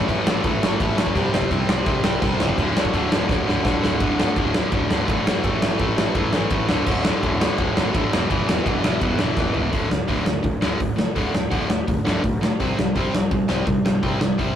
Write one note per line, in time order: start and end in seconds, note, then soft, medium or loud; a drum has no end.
0.00 kick medium
0.09 0.20 A1 medium
0.09 0.27 A2 loud
0.09 0.28 E3 loud
0.09 0.27 A3 loud
0.09 kick medium
0.09 crash medium
0.27 0.39 A1 loud
0.27 0.42 A2 medium
0.27 0.42 E3 medium
0.27 0.43 A3 medium
0.27 snare loud
0.44 0.56 A1 medium
0.44 0.61 A2 medium
0.44 0.61 E3 medium
0.44 0.62 A3 loud
0.44 kick loud
0.44 crash medium
0.62 0.74 A1 medium
0.62 0.79 A2 medium
0.62 0.79 E3 medium
0.62 0.80 A3 loud
0.62 snare loud
0.80 0.92 A1 medium
0.80 0.97 A2 loud
0.80 0.97 E3 loud
0.80 0.97 A3 loud
0.80 kick loud
0.80 crash medium
0.97 1.09 A1 loud
0.97 1.14 A2 medium
0.97 1.14 E3 loud
0.97 1.14 A3 loud
0.97 snare loud
1.07 kick medium
1.15 1.27 C2 loud
1.15 1.32 C3 medium
1.15 1.32 G3 loud
1.15 1.33 C4 loud
1.15 kick loud
1.15 crash medium
1.33 1.45 C2 medium
1.33 1.50 C3 medium
1.33 1.50 G3 loud
1.33 1.51 C4 medium
1.33 snare loud
1.42 kick medium
1.50 1.63 C2 medium
1.50 1.67 C3 loud
1.50 1.67 G3 loud
1.50 1.68 C4 loud
1.50 kick medium
1.50 crash medium
1.68 1.81 C2 loud
1.68 1.84 C3 medium
1.68 1.85 G3 loud
1.68 1.86 C4 loud
1.68 snare loud
1.85 1.98 C2 medium
1.85 2.02 C3 loud
1.85 2.03 G3 loud
1.85 2.04 C4 medium
1.85 kick loud
1.85 crash medium
2.03 2.17 C2 medium
2.03 2.21 C3 medium
2.03 2.21 G3 medium
2.03 2.22 C4 loud
2.03 snare loud
2.22 2.34 C2 medium
2.22 2.40 C3 loud
2.22 2.40 G3 loud
2.22 2.40 C4 loud
2.22 kick loud
2.22 crash medium
2.39 2.52 C#2 medium
2.39 2.57 C3 medium
2.39 2.58 G3 loud
2.39 2.58 C4 loud
2.39 snare loud
2.49 kick medium
2.58 2.70 D1 loud
2.58 2.74 D2 loud
2.58 2.75 A2 loud
2.58 2.75 D3 loud
2.58 kick loud
2.58 crash medium
2.75 2.87 D1 medium
2.75 2.92 D2 medium
2.75 2.92 A2 loud
2.75 2.93 D3 loud
2.75 snare loud
2.85 kick medium
2.93 3.06 D1 medium
2.93 3.10 D2 medium
2.93 3.10 A2 loud
2.93 3.11 D3 loud
2.93 kick medium
2.93 crash medium
3.12 3.24 D1 loud
3.12 3.26 D2 medium
3.12 3.27 A2 medium
3.12 3.28 D3 medium
3.12 snare loud
3.27 3.41 D1 medium
3.27 3.45 D2 medium
3.27 3.45 A2 loud
3.27 3.46 D3 medium
3.27 kick loud
3.27 snare medium
3.46 3.59 D1 medium
3.46 3.61 D2 medium
3.46 3.62 A2 loud
3.46 3.63 D3 medium
3.46 snare medium
3.63 3.77 D1 medium
3.63 3.81 D2 medium
3.63 3.82 A2 loud
3.63 3.83 D3 loud
3.63 kick loud
3.63 snare loud
3.82 3.95 D1 medium
3.82 3.99 D2 medium
3.82 4.00 A2 loud
3.82 4.00 D3 loud
3.82 snare loud
4.00 4.23 D1 loud
4.00 4.17 D2 medium
4.00 4.18 A2 loud
4.00 4.18 D3 loud
4.00 kick loud
4.00 ride medium
4.19 4.35 D2 medium
4.19 4.36 A2 loud
4.19 4.37 D3 medium
4.19 snare loud
4.36 4.59 D1 medium
4.36 4.52 D2 medium
4.36 4.53 A2 medium
4.36 4.53 D3 medium
4.36 kick loud
4.36 ride medium
4.53 4.70 D2 medium
4.53 4.71 A2 medium
4.53 4.71 D3 medium
4.53 snare loud
4.71 4.84 D1 medium
4.71 4.89 D2 medium
4.71 4.89 A2 medium
4.71 4.90 D3 loud
4.71 kick loud
4.71 ride medium
4.90 5.01 D1 medium
4.90 5.07 D2 medium
4.90 5.08 A2 medium
4.90 5.08 D3 loud
4.90 snare loud
5.08 5.20 A1 medium
5.08 5.24 D2 medium
5.08 5.25 A2 medium
5.08 5.25 D3 loud
5.08 kick loud
5.08 ride medium
5.25 5.37 G1 medium
5.25 5.42 D2 loud
5.25 5.42 A2 loud
5.25 5.43 D3 loud
5.25 snare loud
5.44 5.55 A1 loud
5.44 5.60 A2 loud
5.44 5.61 E3 loud
5.44 5.63 A3 loud
5.44 kick loud
5.44 ride medium
5.62 5.73 A1 medium
5.62 5.78 A2 medium
5.62 5.79 E3 loud
5.62 5.80 A3 loud
5.62 snare loud
5.79 5.91 A1 medium
5.79 5.96 A2 medium
5.79 5.96 E3 medium
5.79 5.97 A3 medium
5.79 kick loud
5.79 ride medium
5.96 6.08 A1 medium
5.96 6.14 A2 medium
5.96 6.15 E3 medium
5.96 6.15 A3 medium
5.96 snare loud
6.15 6.27 A1 medium
6.15 6.32 A2 medium
6.15 6.33 E3 loud
6.15 6.33 A3 loud
6.15 kick loud
6.15 ride medium
6.33 6.44 A1 medium
6.33 6.51 A2 medium
6.33 6.51 E3 medium
6.33 6.51 A3 loud
6.33 snare loud
6.50 6.62 A1 medium
6.50 6.68 A2 medium
6.50 6.68 E3 medium
6.50 6.69 A3 medium
6.50 kick loud
6.50 ride medium
6.68 6.80 D1 medium
6.68 6.85 D2 loud
6.68 6.85 A2 loud
6.68 6.86 D3 loud
6.68 snare loud
6.86 7.09 D1 medium
6.86 7.03 D2 loud
6.86 7.03 A2 loud
6.86 7.04 D3 loud
6.86 kick loud
6.86 crash loud
7.04 7.20 D2 medium
7.04 7.21 A2 medium
7.04 7.22 D3 loud
7.04 snare loud
7.22 7.46 D1 medium
7.22 7.39 D2 medium
7.22 7.40 A2 medium
7.22 7.40 D3 medium
7.22 kick loud
7.22 ride medium
7.40 7.56 D2 medium
7.40 7.57 A2 loud
7.40 7.57 D3 medium
7.40 snare loud
7.57 7.70 D1 medium
7.57 7.75 D2 loud
7.57 7.75 A2 loud
7.57 7.76 D3 loud
7.57 kick loud
7.57 ride medium
7.76 7.87 D1 medium
7.76 7.93 D2 medium
7.76 7.93 A2 loud
7.76 7.94 D3 loud
7.76 snare loud
7.94 8.06 A1 medium
7.94 8.11 D2 medium
7.94 8.11 A2 loud
7.94 8.12 D3 medium
7.94 kick loud
7.94 ride medium
8.12 8.24 E1 loud
8.12 8.28 E2 loud
8.12 8.28 B2 loud
8.12 8.29 E3 loud
8.12 snare loud
8.29 8.42 E1 loud
8.29 8.46 E2 loud
8.29 8.46 B2 loud
8.29 8.47 E3 loud
8.29 kick loud
8.29 ride medium
8.47 8.59 E1 medium
8.47 8.64 E2 medium
8.47 8.64 B2 loud
8.47 8.64 E3 loud
8.47 snare loud
8.65 8.77 E1 medium
8.65 8.81 E2 medium
8.65 8.82 B2 loud
8.65 8.83 E3 medium
8.65 kick loud
8.65 ride medium
8.82 8.96 E1 loud
8.82 8.99 E2 medium
8.82 9.00 B2 loud
8.82 9.01 E3 loud
8.82 snare loud
9.00 9.13 E1 medium
9.00 9.18 E2 medium
9.00 9.19 B2 loud
9.00 9.19 E3 loud
9.00 kick loud
9.00 ride medium
9.19 9.31 E1 medium
9.19 9.36 E2 medium
9.19 9.37 B2 medium
9.19 9.37 E3 medium
9.19 snare loud
9.37 9.48 E1 medium
9.37 9.53 E2 medium
9.37 9.53 B2 medium
9.37 9.54 E3 medium
9.37 kick loud
9.37 snare medium
9.54 9.66 E1 loud
9.54 9.71 E2 medium
9.54 9.72 B2 loud
9.54 9.72 E3 loud
9.54 floor tom medium
9.72 9.84 D1 medium
9.72 9.88 D2 medium
9.72 9.88 A2 medium
9.72 9.89 D3 loud
9.72 kick loud
9.72 open hi-hat medium
9.89 10.01 D1 medium
9.89 10.06 D2 medium
9.89 10.06 A2 medium
9.89 snare loud
10.08 10.19 D1 medium
10.08 10.23 D2 medium
10.08 10.24 A2 medium
10.08 10.25 D3 medium
10.08 kick loud
10.08 open hi-hat soft
10.25 10.38 D1 medium
10.25 10.42 D2 medium
10.25 10.42 A2 medium
10.25 snare loud
10.43 10.55 D1 medium
10.43 10.60 D2 medium
10.43 10.60 A2 medium
10.43 kick loud
10.43 open hi-hat medium
10.61 10.73 D1 medium
10.61 10.77 D2 medium
10.61 10.78 A2 medium
10.61 10.79 D3 loud
10.61 snare loud
10.78 10.91 D1 medium
10.78 10.95 D2 medium
10.78 10.95 A2 medium
10.78 kick loud
10.78 open hi-hat medium
10.96 11.09 A1 medium
10.96 11.13 D2 medium
10.96 11.14 A2 medium
10.96 snare loud
11.16 11.27 D1 medium
11.16 11.32 D2 medium
11.16 11.33 A2 medium
11.16 11.33 D3 medium
11.16 kick loud
11.16 open hi-hat medium
11.33 11.44 D1 medium
11.33 11.49 D2 medium
11.33 11.50 A2 medium
11.33 snare loud
11.50 11.63 D1 medium
11.50 11.68 D2 loud
11.50 11.69 A2 medium
11.50 11.69 D3 loud
11.50 kick loud
11.50 open hi-hat medium
11.69 11.81 D1 medium
11.69 11.86 D2 medium
11.69 11.86 A2 medium
11.69 snare loud
11.88 11.99 D1 medium
11.88 12.03 D2 medium
11.88 12.04 A2 medium
11.88 kick loud
11.88 open hi-hat medium
12.05 12.16 D1 medium
12.05 12.22 D2 medium
12.05 12.22 A2 medium
12.05 12.22 D3 loud
12.05 snare loud
12.23 12.45 B1 medium
12.23 12.39 D2 medium
12.23 12.40 A2 medium
12.23 kick loud
12.23 open hi-hat medium
12.41 12.58 D2 medium
12.41 12.58 A2 medium
12.41 snare loud
12.60 12.71 C2 loud
12.60 12.76 C3 medium
12.60 12.77 G3 medium
12.60 12.77 C4 loud
12.60 kick loud
12.60 open hi-hat medium
12.78 12.88 C2 medium
12.78 12.94 C3 medium
12.78 12.94 G3 medium
12.78 snare loud
12.96 13.06 C2 medium
12.96 13.12 C3 medium
12.96 13.13 G3 medium
12.96 13.13 C4 medium
12.96 kick loud
12.96 open hi-hat soft
13.14 13.24 C2 loud
13.14 13.30 C3 medium
13.14 13.30 G3 medium
13.14 snare loud
13.31 13.42 C2 medium
13.31 13.47 C3 medium
13.31 13.47 G3 medium
13.31 kick loud
13.31 open hi-hat soft
13.48 13.60 C2 medium
13.48 13.66 C3 medium
13.48 13.66 G3 loud
13.48 13.66 C4 loud
13.48 snare loud
13.67 13.78 C2 medium
13.67 13.83 C3 medium
13.67 13.83 G3 medium
13.67 kick loud
13.67 open hi-hat medium
13.84 13.95 G1 medium
13.84 14.01 C3 medium
13.84 14.01 G3 medium
13.84 snare loud
14.03 14.14 C2 loud
14.03 14.19 C3 medium
14.03 14.20 G3 medium
14.03 14.20 C4 loud
14.03 kick loud
14.03 open hi-hat medium
14.19 14.31 C2 medium
14.19 14.37 C3 medium
14.19 14.37 G3 medium
14.19 snare loud
14.38 14.50 C2 medium
14.38 14.55 C3 medium
14.38 14.55 G3 medium
14.38 14.55 C4 medium
14.38 kick medium
14.38 open hi-hat medium